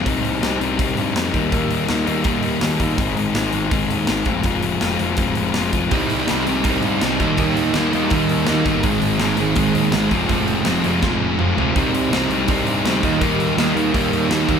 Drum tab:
HH |oooooooo|oooooooo|oooooooo|oooooooo|
SD |--o---o-|--o---o-|--o---o-|--o---o-|
T2 |--------|--------|--------|--------|
FT |--------|--------|--------|--------|
BD |o---o--o|o---o--o|o---o--o|o---o--o|

HH |oooooooo|oooooooo|oooooooo|oooo----|
SD |--o---o-|--o---o-|--o---o-|--o-o---|
T2 |--------|--------|--------|------o-|
FT |--------|--------|--------|-------o|
BD |o---o--o|o---o--o|o---o--o|o---o---|

HH |oooooooo|oooooooo|
SD |--o---o-|--o---o-|
T2 |--------|--------|
FT |--------|--------|
BD |o---o--o|o---o--o|